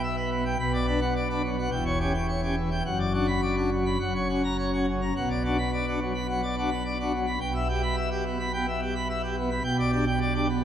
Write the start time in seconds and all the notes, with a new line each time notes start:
Already playing: B1 B2
0.03 E5
0.17 B4
0.31 B3
0.46 G5
0.60 B1 B2 B5
0.74 D5
0.87 D4 B4
1.01 F#5
1.15 D5
1.29 D4 B4
1.44 F#3
1.58 F#5
1.71 E1 E2 G5
1.86 C#5
2.00 C#4 G4
2.14 G5
2.28 C#5
2.42 C#4 G4
2.57 E3
2.71 G5
2.85 F#1 F#2 F#5
2.99 D5
3.13 D4 F#4
3.28 B5
3.42 D5
3.57 D4 F#4
3.72 F#3
3.86 B5
4.00 F#1 F#2 F#5
4.15 C#5
4.29 C#4 F#4
4.44 A#5
4.58 C#5
4.73 C#4 F#4
4.88 C#3
5.02 A#5
5.16 B1 B2 F#5
5.30 D5
5.45 D4 F#4
5.58 B5
5.73 D5
5.87 D4 F#4
6.01 F#3
6.15 B5
6.29 F#3 F#5
6.43 D5
6.58 D4 F#4
6.70 B5
6.85 D5
7.00 D4 F#4
7.13 F#3
7.27 B5
7.40 B1 B2 G5
7.55 E5
7.69 G4
7.83 B5
7.96 E5
8.11 G4
8.25 B3
8.40 B5
8.54 B3 G5
8.68 E5
8.81 G4
8.96 B5
9.09 E5
9.23 G4
9.37 B3
9.51 B5
9.64 B1 B2 G5
9.79 D5
9.92 D4 G4
10.07 G5
10.21 D5
10.35 D4 G4
10.49 B3